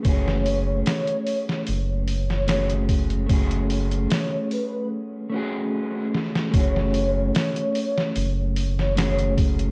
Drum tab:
HH |o-o-oxo-o-o-oxox|oxoxo-o---------|o-o-oxo-o-o-oxox|
SD |-o--o--o---oo---|----o---------oo|-o--o--o---oo---|
BD |o-------------o-|o---------------|o-------------o-|